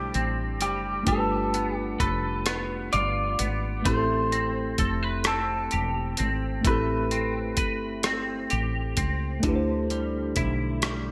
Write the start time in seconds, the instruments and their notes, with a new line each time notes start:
Already playing: fretless electric bass B1, clean electric guitar D3 G3 E4 G4, tine electric piano A3 D4 E4 G4 C5
0.14 fretless electric bass A1, clean electric guitar C4, closed hi-hat
0.61 fretless electric bass F#1, clean electric guitar G3 G4, closed hi-hat
1.03 tine electric piano A3 D4, kick, closed hi-hat
1.07 fretless electric bass G1, clean electric guitar G3 A4, tine electric piano F4 G4
1.12 tine electric piano A4
1.18 tine electric piano B4
1.54 clean electric guitar B3, closed hi-hat
1.76 clean electric guitar G4
2.00 fretless electric bass F1, clean electric guitar A4 B4, kick, closed hi-hat
2.46 clean electric guitar B3, cross-stick, closed hi-hat
2.93 fretless electric bass G1, clean electric guitar F4 D5, closed hi-hat
3.39 fretless electric bass G#1, clean electric guitar B3, closed hi-hat
3.83 fretless electric bass A1, tine electric piano A3 C4, clean electric guitar A3 C5, kick, closed hi-hat
3.87 tine electric piano E4 G4
3.92 tine electric piano A4
3.97 tine electric piano A4
4.32 clean electric guitar C4, closed hi-hat
4.78 fretless electric bass F1, clean electric guitar A4, kick, closed hi-hat
5.03 clean electric guitar B4
5.24 clean electric guitar C4 A4, cross-stick, closed hi-hat
5.71 fretless electric bass E1, clean electric guitar G4, closed hi-hat
6.17 fretless electric bass G#1, clean electric guitar C4, closed hi-hat
6.61 tine electric piano A3 C4, clean electric guitar A3, kick, closed hi-hat
6.65 fretless electric bass A1, tine electric piano E4 G4, clean electric guitar B4
6.70 tine electric piano A4
7.11 clean electric guitar C4, closed hi-hat
7.57 fretless electric bass G1, clean electric guitar B4, kick, closed hi-hat
8.03 clean electric guitar C4, cross-stick, closed hi-hat
8.50 fretless electric bass A1, clean electric guitar G4, closed hi-hat
8.97 fretless electric bass C#2, clean electric guitar C4, kick, closed hi-hat
9.40 fretless electric bass D2, clean electric guitar D3, tine electric piano A3 D4, kick, closed hi-hat
9.44 tine electric piano E4 G4
9.49 tine electric piano B4
9.56 tine electric piano C5
9.90 clean electric guitar G3, closed hi-hat
10.36 fretless electric bass B1, clean electric guitar E4, kick, closed hi-hat
10.82 clean electric guitar G3, cross-stick, closed hi-hat